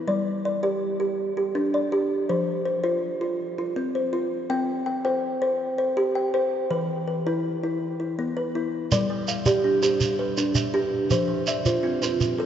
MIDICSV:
0, 0, Header, 1, 4, 480
1, 0, Start_track
1, 0, Tempo, 367647
1, 90, Time_signature, 12, 3, 24, 8
1, 16266, End_track
2, 0, Start_track
2, 0, Title_t, "Kalimba"
2, 0, Program_c, 0, 108
2, 99, Note_on_c, 0, 55, 73
2, 103, Note_on_c, 0, 74, 58
2, 576, Note_off_c, 0, 74, 0
2, 577, Note_off_c, 0, 55, 0
2, 592, Note_on_c, 0, 74, 59
2, 812, Note_off_c, 0, 74, 0
2, 823, Note_on_c, 0, 67, 64
2, 828, Note_on_c, 0, 74, 54
2, 1289, Note_off_c, 0, 67, 0
2, 1305, Note_on_c, 0, 67, 62
2, 1545, Note_off_c, 0, 74, 0
2, 1775, Note_off_c, 0, 67, 0
2, 1791, Note_on_c, 0, 67, 59
2, 2026, Note_on_c, 0, 62, 76
2, 2273, Note_on_c, 0, 74, 62
2, 2494, Note_off_c, 0, 67, 0
2, 2505, Note_off_c, 0, 62, 0
2, 2510, Note_on_c, 0, 67, 70
2, 2988, Note_off_c, 0, 67, 0
2, 2990, Note_off_c, 0, 74, 0
2, 2994, Note_on_c, 0, 72, 61
2, 2998, Note_on_c, 0, 53, 72
2, 3451, Note_off_c, 0, 72, 0
2, 3466, Note_on_c, 0, 72, 54
2, 3474, Note_off_c, 0, 53, 0
2, 3686, Note_off_c, 0, 72, 0
2, 3702, Note_on_c, 0, 72, 59
2, 3704, Note_on_c, 0, 65, 68
2, 4177, Note_off_c, 0, 65, 0
2, 4193, Note_on_c, 0, 65, 63
2, 4428, Note_off_c, 0, 72, 0
2, 4663, Note_off_c, 0, 65, 0
2, 4679, Note_on_c, 0, 65, 64
2, 4913, Note_on_c, 0, 60, 68
2, 5159, Note_on_c, 0, 72, 56
2, 5375, Note_off_c, 0, 65, 0
2, 5391, Note_on_c, 0, 65, 69
2, 5394, Note_off_c, 0, 60, 0
2, 5873, Note_on_c, 0, 79, 65
2, 5874, Note_off_c, 0, 65, 0
2, 5875, Note_on_c, 0, 60, 80
2, 5879, Note_off_c, 0, 72, 0
2, 6332, Note_off_c, 0, 79, 0
2, 6348, Note_on_c, 0, 79, 60
2, 6357, Note_off_c, 0, 60, 0
2, 6574, Note_off_c, 0, 79, 0
2, 6590, Note_on_c, 0, 72, 68
2, 6590, Note_on_c, 0, 79, 55
2, 7057, Note_off_c, 0, 72, 0
2, 7073, Note_on_c, 0, 72, 69
2, 7316, Note_off_c, 0, 79, 0
2, 7536, Note_off_c, 0, 72, 0
2, 7552, Note_on_c, 0, 72, 61
2, 7794, Note_on_c, 0, 67, 72
2, 8034, Note_on_c, 0, 79, 60
2, 8261, Note_off_c, 0, 72, 0
2, 8276, Note_on_c, 0, 72, 73
2, 8278, Note_off_c, 0, 67, 0
2, 8755, Note_on_c, 0, 52, 77
2, 8757, Note_on_c, 0, 71, 62
2, 8759, Note_off_c, 0, 79, 0
2, 8760, Note_off_c, 0, 72, 0
2, 9223, Note_off_c, 0, 71, 0
2, 9238, Note_on_c, 0, 71, 54
2, 9239, Note_off_c, 0, 52, 0
2, 9472, Note_off_c, 0, 71, 0
2, 9487, Note_on_c, 0, 64, 71
2, 9487, Note_on_c, 0, 71, 59
2, 9952, Note_off_c, 0, 64, 0
2, 9968, Note_on_c, 0, 64, 65
2, 10205, Note_off_c, 0, 71, 0
2, 10427, Note_off_c, 0, 64, 0
2, 10443, Note_on_c, 0, 64, 54
2, 10689, Note_on_c, 0, 59, 72
2, 10924, Note_on_c, 0, 71, 66
2, 11152, Note_off_c, 0, 64, 0
2, 11165, Note_off_c, 0, 59, 0
2, 11167, Note_on_c, 0, 64, 66
2, 11641, Note_off_c, 0, 71, 0
2, 11643, Note_off_c, 0, 64, 0
2, 11646, Note_on_c, 0, 74, 66
2, 11649, Note_on_c, 0, 55, 84
2, 12118, Note_on_c, 0, 77, 66
2, 12123, Note_off_c, 0, 55, 0
2, 12337, Note_off_c, 0, 74, 0
2, 12351, Note_on_c, 0, 67, 73
2, 12353, Note_on_c, 0, 74, 57
2, 12812, Note_off_c, 0, 67, 0
2, 12828, Note_on_c, 0, 67, 70
2, 12835, Note_off_c, 0, 77, 0
2, 13072, Note_off_c, 0, 74, 0
2, 13307, Note_on_c, 0, 71, 57
2, 13309, Note_off_c, 0, 67, 0
2, 13548, Note_on_c, 0, 62, 71
2, 14020, Note_on_c, 0, 67, 75
2, 14026, Note_off_c, 0, 71, 0
2, 14027, Note_off_c, 0, 62, 0
2, 14501, Note_off_c, 0, 67, 0
2, 14504, Note_on_c, 0, 53, 76
2, 14510, Note_on_c, 0, 72, 72
2, 14982, Note_off_c, 0, 53, 0
2, 14986, Note_on_c, 0, 76, 63
2, 15211, Note_off_c, 0, 72, 0
2, 15226, Note_on_c, 0, 72, 63
2, 15227, Note_on_c, 0, 65, 69
2, 15691, Note_off_c, 0, 65, 0
2, 15699, Note_off_c, 0, 76, 0
2, 15707, Note_on_c, 0, 65, 76
2, 15938, Note_off_c, 0, 72, 0
2, 16178, Note_off_c, 0, 65, 0
2, 16188, Note_on_c, 0, 69, 68
2, 16266, Note_off_c, 0, 69, 0
2, 16266, End_track
3, 0, Start_track
3, 0, Title_t, "Kalimba"
3, 0, Program_c, 1, 108
3, 11880, Note_on_c, 1, 55, 83
3, 12121, Note_on_c, 1, 76, 55
3, 12350, Note_on_c, 1, 67, 60
3, 12358, Note_off_c, 1, 55, 0
3, 12572, Note_off_c, 1, 67, 0
3, 12588, Note_on_c, 1, 67, 59
3, 12589, Note_on_c, 1, 62, 69
3, 12831, Note_on_c, 1, 72, 68
3, 12837, Note_off_c, 1, 76, 0
3, 13071, Note_off_c, 1, 62, 0
3, 13307, Note_on_c, 1, 71, 73
3, 13309, Note_off_c, 1, 67, 0
3, 13550, Note_off_c, 1, 72, 0
3, 13777, Note_on_c, 1, 76, 71
3, 13788, Note_off_c, 1, 71, 0
3, 14020, Note_on_c, 1, 62, 77
3, 14484, Note_off_c, 1, 76, 0
3, 14499, Note_on_c, 1, 76, 59
3, 14501, Note_off_c, 1, 62, 0
3, 14728, Note_on_c, 1, 53, 74
3, 14976, Note_on_c, 1, 74, 57
3, 14979, Note_off_c, 1, 76, 0
3, 15213, Note_off_c, 1, 53, 0
3, 15220, Note_on_c, 1, 65, 59
3, 15431, Note_off_c, 1, 65, 0
3, 15445, Note_on_c, 1, 60, 67
3, 15447, Note_on_c, 1, 65, 66
3, 15690, Note_on_c, 1, 71, 70
3, 15694, Note_off_c, 1, 74, 0
3, 15928, Note_off_c, 1, 60, 0
3, 16167, Note_off_c, 1, 65, 0
3, 16169, Note_on_c, 1, 69, 72
3, 16266, Note_off_c, 1, 69, 0
3, 16266, Note_off_c, 1, 71, 0
3, 16266, End_track
4, 0, Start_track
4, 0, Title_t, "Shekere"
4, 11641, Note_on_c, 9, 82, 81
4, 11772, Note_off_c, 9, 82, 0
4, 12114, Note_on_c, 9, 82, 50
4, 12245, Note_off_c, 9, 82, 0
4, 12347, Note_on_c, 9, 82, 83
4, 12477, Note_off_c, 9, 82, 0
4, 12832, Note_on_c, 9, 82, 55
4, 12962, Note_off_c, 9, 82, 0
4, 13063, Note_on_c, 9, 82, 69
4, 13193, Note_off_c, 9, 82, 0
4, 13546, Note_on_c, 9, 82, 51
4, 13676, Note_off_c, 9, 82, 0
4, 13772, Note_on_c, 9, 82, 78
4, 13903, Note_off_c, 9, 82, 0
4, 14498, Note_on_c, 9, 82, 76
4, 14628, Note_off_c, 9, 82, 0
4, 14973, Note_on_c, 9, 82, 52
4, 15104, Note_off_c, 9, 82, 0
4, 15217, Note_on_c, 9, 82, 65
4, 15347, Note_off_c, 9, 82, 0
4, 15700, Note_on_c, 9, 82, 58
4, 15831, Note_off_c, 9, 82, 0
4, 15935, Note_on_c, 9, 82, 69
4, 16065, Note_off_c, 9, 82, 0
4, 16266, End_track
0, 0, End_of_file